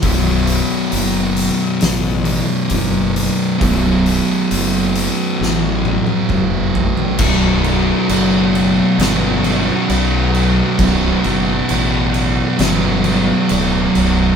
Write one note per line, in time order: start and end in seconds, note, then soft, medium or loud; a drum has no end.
0.02 0.59 B0 medium
0.02 3.58 B1 medium
0.02 3.59 F#2 medium
0.02 kick loud
0.02 open hi-hat medium
0.06 3.60 B2 medium
0.47 open hi-hat soft
0.92 1.49 F#1 medium
0.92 open hi-hat medium
1.37 open hi-hat medium
1.81 2.39 A1 medium
1.81 snare loud
1.81 open hi-hat medium
2.25 open hi-hat medium
2.70 3.27 F#1 medium
2.70 kick medium
2.70 open hi-hat medium
3.16 open hi-hat soft
3.59 4.18 B0 loud
3.59 7.16 B1 medium
3.59 7.17 F#2 medium
3.59 kick loud
3.59 open hi-hat medium
3.63 7.18 B2 loud
4.06 open hi-hat soft
4.51 5.07 F#1 medium
4.51 open hi-hat medium
4.95 open hi-hat medium
5.41 5.97 A1 medium
5.41 snare medium
5.85 high tom medium
6.07 high tom medium
6.29 6.86 F#1 medium
6.29 kick medium
6.29 mid tom medium
6.75 floor tom medium
6.97 floor tom medium
7.19 7.90 B0 medium
7.19 8.98 B1 medium
7.19 8.98 F#2 medium
7.19 kick loud
7.19 crash loud
7.19 crash medium
7.23 9.03 B2 medium
7.64 crash medium
8.09 8.80 F#1 medium
8.09 crash medium
8.55 crash medium
8.98 9.69 G1 medium
8.98 10.78 B1 medium
8.98 10.78 F#2 medium
8.98 snare loud
8.98 crash medium
9.03 10.81 B2 medium
9.44 crash medium
9.90 10.60 B1 loud
9.90 crash medium
10.35 crash medium
10.78 11.14 B0 medium
10.78 12.58 B1 medium
10.78 12.58 F#2 medium
10.78 12.62 B2 medium
10.78 kick loud
10.78 crash medium
11.24 11.60 F#1 medium
11.24 crash medium
11.69 12.41 A1 medium
11.69 crash medium
12.14 crash medium
12.58 13.30 G1 medium
12.58 14.36 B1 medium
12.58 14.36 F#2 medium
12.58 snare loud
12.58 crash medium
12.63 14.36 B2 medium
13.04 crash medium
13.49 13.86 D1 medium
13.49 crash medium
13.95 14.30 B0 medium
13.95 crash medium